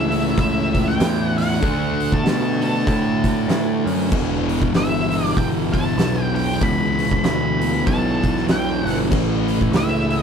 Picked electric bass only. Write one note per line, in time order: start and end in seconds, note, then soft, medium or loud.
0.00 0.33 C#2 loud
0.38 0.96 C#2 medium
1.00 1.58 E2 loud
1.62 2.21 D2 loud
2.24 2.82 B2 loud
2.87 3.45 A2 medium
3.48 3.83 A2 loud
3.86 4.10 F#2 medium
4.12 4.70 E1 loud
4.73 5.32 G1 loud
5.37 5.95 G1 medium
5.98 6.57 B1 loud
6.61 7.20 C#2 loud
7.24 7.82 D2 loud
7.87 8.45 B1 loud
8.48 8.83 B1 loud
8.85 9.12 G1 medium
9.12 9.70 A1 loud
9.72 10.22 C#2 loud